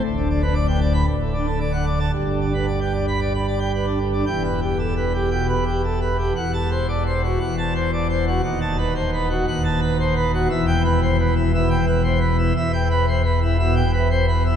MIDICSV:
0, 0, Header, 1, 2, 480
1, 0, Start_track
1, 0, Key_signature, 1, "major"
1, 0, Tempo, 526316
1, 36, Time_signature, 4, 2, 24, 8
1, 3893, Key_signature, 1, "minor"
1, 6277, Tempo, 515907
1, 13422, End_track
2, 0, Start_track
2, 0, Title_t, "Pipe organ"
2, 0, Program_c, 0, 19
2, 25, Note_on_c, 0, 26, 84
2, 26, Note_on_c, 0, 38, 84
2, 146, Note_on_c, 0, 50, 68
2, 256, Note_off_c, 0, 50, 0
2, 271, Note_on_c, 0, 62, 66
2, 378, Note_off_c, 0, 62, 0
2, 388, Note_on_c, 0, 71, 64
2, 495, Note_off_c, 0, 71, 0
2, 497, Note_on_c, 0, 74, 72
2, 609, Note_off_c, 0, 74, 0
2, 617, Note_on_c, 0, 79, 63
2, 728, Note_off_c, 0, 79, 0
2, 737, Note_on_c, 0, 74, 69
2, 848, Note_off_c, 0, 74, 0
2, 854, Note_on_c, 0, 83, 83
2, 952, Note_off_c, 0, 26, 0
2, 952, Note_off_c, 0, 38, 0
2, 961, Note_off_c, 0, 83, 0
2, 973, Note_on_c, 0, 38, 80
2, 974, Note_on_c, 0, 26, 88
2, 1102, Note_on_c, 0, 45, 55
2, 1210, Note_off_c, 0, 45, 0
2, 1225, Note_on_c, 0, 62, 65
2, 1332, Note_off_c, 0, 62, 0
2, 1339, Note_on_c, 0, 69, 61
2, 1449, Note_off_c, 0, 69, 0
2, 1462, Note_on_c, 0, 74, 66
2, 1571, Note_off_c, 0, 74, 0
2, 1576, Note_on_c, 0, 78, 62
2, 1688, Note_off_c, 0, 78, 0
2, 1701, Note_on_c, 0, 74, 59
2, 1812, Note_off_c, 0, 74, 0
2, 1816, Note_on_c, 0, 81, 79
2, 1915, Note_off_c, 0, 26, 0
2, 1915, Note_off_c, 0, 38, 0
2, 1925, Note_off_c, 0, 81, 0
2, 1935, Note_on_c, 0, 31, 69
2, 1936, Note_on_c, 0, 43, 71
2, 2068, Note_on_c, 0, 50, 53
2, 2179, Note_off_c, 0, 50, 0
2, 2192, Note_on_c, 0, 62, 55
2, 2302, Note_off_c, 0, 62, 0
2, 2318, Note_on_c, 0, 71, 48
2, 2426, Note_off_c, 0, 71, 0
2, 2439, Note_on_c, 0, 74, 61
2, 2547, Note_off_c, 0, 74, 0
2, 2563, Note_on_c, 0, 79, 56
2, 2670, Note_off_c, 0, 79, 0
2, 2676, Note_on_c, 0, 74, 56
2, 2787, Note_off_c, 0, 74, 0
2, 2807, Note_on_c, 0, 83, 73
2, 2914, Note_off_c, 0, 83, 0
2, 2928, Note_on_c, 0, 74, 63
2, 3035, Note_off_c, 0, 74, 0
2, 3049, Note_on_c, 0, 83, 59
2, 3156, Note_off_c, 0, 83, 0
2, 3169, Note_on_c, 0, 74, 58
2, 3276, Note_off_c, 0, 74, 0
2, 3282, Note_on_c, 0, 79, 56
2, 3393, Note_off_c, 0, 79, 0
2, 3413, Note_on_c, 0, 71, 54
2, 3519, Note_off_c, 0, 71, 0
2, 3529, Note_on_c, 0, 62, 52
2, 3638, Note_off_c, 0, 62, 0
2, 3646, Note_on_c, 0, 50, 45
2, 3756, Note_off_c, 0, 50, 0
2, 3770, Note_on_c, 0, 62, 46
2, 3849, Note_off_c, 0, 31, 0
2, 3850, Note_off_c, 0, 43, 0
2, 3873, Note_off_c, 0, 62, 0
2, 3889, Note_on_c, 0, 28, 74
2, 3890, Note_on_c, 0, 40, 75
2, 3890, Note_on_c, 0, 79, 86
2, 4034, Note_off_c, 0, 79, 0
2, 4052, Note_on_c, 0, 71, 64
2, 4195, Note_off_c, 0, 71, 0
2, 4211, Note_on_c, 0, 67, 62
2, 4354, Note_off_c, 0, 67, 0
2, 4366, Note_on_c, 0, 69, 55
2, 4503, Note_off_c, 0, 69, 0
2, 4535, Note_on_c, 0, 71, 67
2, 4674, Note_off_c, 0, 71, 0
2, 4688, Note_on_c, 0, 67, 56
2, 4830, Note_off_c, 0, 67, 0
2, 4841, Note_on_c, 0, 47, 65
2, 4842, Note_on_c, 0, 79, 75
2, 4986, Note_off_c, 0, 79, 0
2, 5003, Note_on_c, 0, 71, 65
2, 5056, Note_off_c, 0, 47, 0
2, 5146, Note_off_c, 0, 71, 0
2, 5166, Note_on_c, 0, 67, 66
2, 5307, Note_off_c, 0, 67, 0
2, 5328, Note_on_c, 0, 69, 63
2, 5461, Note_off_c, 0, 69, 0
2, 5486, Note_on_c, 0, 71, 68
2, 5626, Note_off_c, 0, 71, 0
2, 5639, Note_on_c, 0, 67, 61
2, 5761, Note_off_c, 0, 28, 0
2, 5761, Note_off_c, 0, 40, 0
2, 5774, Note_off_c, 0, 67, 0
2, 5799, Note_on_c, 0, 28, 77
2, 5800, Note_on_c, 0, 40, 74
2, 5802, Note_on_c, 0, 78, 72
2, 5942, Note_off_c, 0, 78, 0
2, 5960, Note_on_c, 0, 81, 85
2, 6101, Note_off_c, 0, 81, 0
2, 6120, Note_on_c, 0, 72, 65
2, 6260, Note_off_c, 0, 72, 0
2, 6281, Note_on_c, 0, 74, 59
2, 6416, Note_off_c, 0, 74, 0
2, 6446, Note_on_c, 0, 72, 65
2, 6586, Note_off_c, 0, 72, 0
2, 6609, Note_on_c, 0, 66, 66
2, 6739, Note_off_c, 0, 40, 0
2, 6741, Note_off_c, 0, 28, 0
2, 6748, Note_off_c, 0, 66, 0
2, 6758, Note_on_c, 0, 40, 74
2, 6760, Note_on_c, 0, 28, 70
2, 6760, Note_on_c, 0, 78, 76
2, 6903, Note_off_c, 0, 78, 0
2, 6926, Note_on_c, 0, 81, 75
2, 7066, Note_off_c, 0, 81, 0
2, 7087, Note_on_c, 0, 72, 68
2, 7227, Note_off_c, 0, 72, 0
2, 7254, Note_on_c, 0, 74, 62
2, 7384, Note_off_c, 0, 74, 0
2, 7406, Note_on_c, 0, 72, 71
2, 7547, Note_off_c, 0, 72, 0
2, 7569, Note_on_c, 0, 66, 68
2, 7691, Note_off_c, 0, 40, 0
2, 7692, Note_off_c, 0, 28, 0
2, 7701, Note_off_c, 0, 66, 0
2, 7722, Note_on_c, 0, 39, 78
2, 7723, Note_on_c, 0, 78, 82
2, 7724, Note_on_c, 0, 27, 82
2, 7865, Note_off_c, 0, 78, 0
2, 7887, Note_on_c, 0, 81, 92
2, 8028, Note_off_c, 0, 81, 0
2, 8047, Note_on_c, 0, 71, 73
2, 8188, Note_off_c, 0, 71, 0
2, 8204, Note_on_c, 0, 72, 64
2, 8340, Note_off_c, 0, 72, 0
2, 8372, Note_on_c, 0, 71, 69
2, 8512, Note_off_c, 0, 71, 0
2, 8526, Note_on_c, 0, 66, 72
2, 8669, Note_off_c, 0, 66, 0
2, 8672, Note_off_c, 0, 27, 0
2, 8674, Note_off_c, 0, 39, 0
2, 8691, Note_on_c, 0, 27, 81
2, 8692, Note_on_c, 0, 39, 80
2, 8693, Note_on_c, 0, 78, 83
2, 8832, Note_off_c, 0, 78, 0
2, 8846, Note_on_c, 0, 81, 81
2, 8988, Note_off_c, 0, 81, 0
2, 9012, Note_on_c, 0, 71, 80
2, 9151, Note_off_c, 0, 71, 0
2, 9176, Note_on_c, 0, 72, 70
2, 9306, Note_off_c, 0, 72, 0
2, 9333, Note_on_c, 0, 71, 81
2, 9471, Note_off_c, 0, 71, 0
2, 9493, Note_on_c, 0, 66, 71
2, 9618, Note_off_c, 0, 27, 0
2, 9618, Note_off_c, 0, 39, 0
2, 9625, Note_off_c, 0, 66, 0
2, 9645, Note_on_c, 0, 40, 88
2, 9645, Note_on_c, 0, 76, 80
2, 9647, Note_on_c, 0, 28, 94
2, 9787, Note_off_c, 0, 76, 0
2, 9803, Note_on_c, 0, 79, 110
2, 9946, Note_off_c, 0, 79, 0
2, 9964, Note_on_c, 0, 71, 75
2, 10106, Note_off_c, 0, 71, 0
2, 10127, Note_on_c, 0, 72, 69
2, 10261, Note_off_c, 0, 72, 0
2, 10283, Note_on_c, 0, 71, 76
2, 10425, Note_off_c, 0, 71, 0
2, 10442, Note_on_c, 0, 64, 69
2, 10584, Note_off_c, 0, 64, 0
2, 10609, Note_on_c, 0, 47, 80
2, 10610, Note_on_c, 0, 76, 85
2, 10748, Note_off_c, 0, 76, 0
2, 10758, Note_on_c, 0, 79, 86
2, 10819, Note_off_c, 0, 47, 0
2, 10901, Note_off_c, 0, 79, 0
2, 10916, Note_on_c, 0, 71, 76
2, 11059, Note_off_c, 0, 71, 0
2, 11071, Note_on_c, 0, 72, 72
2, 11210, Note_off_c, 0, 72, 0
2, 11232, Note_on_c, 0, 71, 85
2, 11377, Note_off_c, 0, 71, 0
2, 11394, Note_on_c, 0, 64, 71
2, 11522, Note_off_c, 0, 40, 0
2, 11523, Note_off_c, 0, 28, 0
2, 11532, Note_off_c, 0, 64, 0
2, 11560, Note_on_c, 0, 40, 82
2, 11562, Note_on_c, 0, 76, 85
2, 11565, Note_on_c, 0, 28, 91
2, 11702, Note_off_c, 0, 76, 0
2, 11718, Note_on_c, 0, 79, 94
2, 11859, Note_off_c, 0, 79, 0
2, 11884, Note_on_c, 0, 71, 82
2, 12021, Note_off_c, 0, 71, 0
2, 12038, Note_on_c, 0, 72, 69
2, 12171, Note_off_c, 0, 72, 0
2, 12199, Note_on_c, 0, 71, 73
2, 12337, Note_off_c, 0, 71, 0
2, 12360, Note_on_c, 0, 64, 71
2, 12498, Note_off_c, 0, 64, 0
2, 12518, Note_on_c, 0, 76, 87
2, 12520, Note_on_c, 0, 47, 78
2, 12658, Note_off_c, 0, 76, 0
2, 12675, Note_on_c, 0, 79, 85
2, 12730, Note_off_c, 0, 47, 0
2, 12817, Note_off_c, 0, 79, 0
2, 12836, Note_on_c, 0, 71, 77
2, 12977, Note_off_c, 0, 71, 0
2, 12998, Note_on_c, 0, 72, 73
2, 13132, Note_off_c, 0, 72, 0
2, 13163, Note_on_c, 0, 71, 81
2, 13302, Note_off_c, 0, 71, 0
2, 13327, Note_on_c, 0, 64, 69
2, 13422, Note_off_c, 0, 28, 0
2, 13422, Note_off_c, 0, 40, 0
2, 13422, Note_off_c, 0, 64, 0
2, 13422, End_track
0, 0, End_of_file